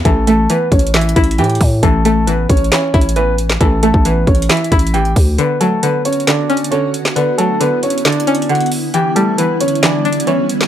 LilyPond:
<<
  \new Staff \with { instrumentName = "Grand piano" } { \time 4/4 \key a \mixolydian \tempo 4 = 135 <a a'>8 <a a'>8 <b b'>8 <cis' cis''>8 <e' e''>4 <g' g''>8 r8 | <a a'>8 <a a'>8 <b b'>8 <cis' cis''>8 <cis' cis''>4 <b b'>8 r8 | <a a'>8 <a a'>8 <b b'>8 <cis' cis''>8 <e' e''>4 <g' g''>8 r8 | <b b'>8 <a a'>8 <b b'>8 <cis' cis''>8 <d' d''>4 <cis' cis''>8 r8 |
<b b'>8 <a a'>8 <b b'>8 <cis' cis''>8 <d' d''>4 <fis' fis''>8 r8 | <g' g''>8 <a a'>8 <b b'>8 <cis' cis''>8 <d' d''>4 <cis' cis''>8 r8 | }
  \new Staff \with { instrumentName = "Ambient pad" } { \time 4/4 \key a \mixolydian << { r1 | r1 | r1 | fis'1 |
e'1~ | e'1 | } \\ { r1 | r1 | r1 | <d b>1~ |
<d b>1 | <d g b>1 | } >> }
  \new Staff \with { instrumentName = "Synth pluck" } { \clef bass \time 4/4 \key a \mixolydian <e e'>8 a8 e4 e8 e'8 e4 | e8 a8 e4 e8 e'8 e4 | e8 a8 e4 e8 e'8 e4 | d8 fis8 d4 d8 cis'8 d4 |
d8 fis8 d4 d8 cis'8 d4 | e8 g8 e4 e8 d'8 e4 | }
  \new Staff \with { instrumentName = "808-style bass" } { \clef bass \time 4/4 \key a \mixolydian a,,4 r8 a,,4 a,,8 a,8 a,8 | a,,4. a,,8 r8 a,,4. | a,,8. a,,8. a,,8 r8 a,,4 d,8 | r1 |
r1 | r1 | }
  \new DrumStaff \with { instrumentName = "Drums" } \drummode { \time 4/4 <hh bd>8 hh8 \tuplet 3/2 { hh16 r16 r16 <hh bd>16 hh16 hh16 <hc hh sn>16 hh16 hh16 <hh bd>16 hh16 hh16 } hh32 hh32 hh32 hh32 <hho bd>8 | <hh bd>8 hh8 \tuplet 3/2 { hh16 r16 r16 <hh bd>16 hh16 hh16 <hc hh sn>16 r16 r16 <hh bd>16 hh16 hh16 } hh8 hh16 <hc sn>16 | <hh bd>8 hh16 bd16 \tuplet 3/2 { hh16 r16 r16 <hh bd>16 hh16 hh16 <hc hh sn>16 hh16 hh16 <hh bd>16 hh16 hh16 } hh16 hh16 <hho bd>8 | hh8 hh8 \tuplet 3/2 { hh16 r16 r16 hh16 hh16 hh16 <hc hh sn>16 r16 r16 hh16 hh16 hh16 } hh8 hh16 <hc sn>16 |
hh8 hh8 \tuplet 3/2 { hh16 r16 r16 hh16 hh16 hh16 <hc hh sn>16 hh16 hh16 hh16 hh16 hh16 } hh32 hh32 hh32 hh32 hho8 | hh8 hh8 \tuplet 3/2 { hh16 r16 r16 hh16 hh16 hh16 <hc hh sn>16 r16 r16 hh16 hh16 hh16 } hh8 hh16 <hc sn>16 | }
>>